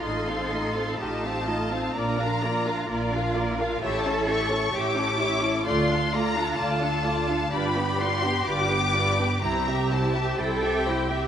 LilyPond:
<<
  \new Staff \with { instrumentName = "Violin section" } { \time 4/4 \key f \major \tempo 4 = 64 c'''4 a''4 bes''4. r8 | a''8 cis'''8 d'''4 c'''8 bes''8 a''4 | b''8 c'''8 d'''4 bes''8 a''8 g''4 | }
  \new Staff \with { instrumentName = "Violin section" } { \time 4/4 \key f \major <ees' ees''>16 <f' f''>16 <ees' ees''>16 <f' f''>16 <ees' ees''>16 <f' f''>16 <ees' ees''>16 <f' f''>16 <bes' d''>16 <f' f''>16 <bes' d''>16 <f' f''>16 <bes' d''>16 <f' f''>16 <bes' d''>16 <f' f''>16 | <cis'' e''>16 <a' cis''>16 <cis'' e''>16 <a' cis''>16 <cis'' e''>16 <a' cis''>16 <cis'' e''>16 <a' cis''>16 <f' d''>16 <a' f''>16 <f' d''>16 <a' f''>16 <f' d''>16 <a' f''>16 <f' d''>16 <a' f''>16 | <b' d''>16 <g' b'>16 <b' d''>16 <g' b'>16 <b' d''>16 <g' b'>16 <b' d''>16 <g' b'>16 <e' c''>16 <g' e''>16 <e' c''>16 <g' e''>16 <e' c''>16 <g' e''>16 <e' c''>16 <g' e''>16 | }
  \new Staff \with { instrumentName = "Cello section" } { \time 4/4 \key f \major a'4 g'8 f'8 d'8 f'4. | a'4 g'8 e'8 f'2 | g'2 g'4 a'8 g'8 | }
  \new Staff \with { instrumentName = "Viola section" } { \time 4/4 \key f \major <a f'>16 <c' ees'>16 <a f'>16 <c' ees'>16 <a f'>16 <c' ees'>16 <a f'>16 <c' ees'>16 <bes f'>16 <d' bes'>16 <bes f'>16 <d' bes'>16 <bes f'>16 <d' bes'>16 <bes f'>16 <d' bes'>16 | <e' g'>16 <cis' e'>16 <e' g'>16 <cis' e'>16 <e' g'>16 <cis' e'>16 <e' g'>16 <cis' e'>16 <a f'>16 d'16 <a f'>16 d'16 <a f'>16 d'16 <a f'>16 d'16 | <d' f'>16 <b d'>16 <d' f'>16 <b d'>16 <d' f'>16 <b d'>16 <d' f'>16 <b d'>16 <g e'>16 <c' g'>16 <g e'>16 <c' g'>16 <g e'>16 <c' g'>16 <g e'>16 <c' g'>16 | }
  \new Staff \with { instrumentName = "Double bass section" } { \clef bass \time 4/4 \key f \major a,,4 a,,4 bes,,4 bes,,4 | a,,4 a,,4 d,4 d,4 | g,,4 g,,4 c,4 c,4 | }
>>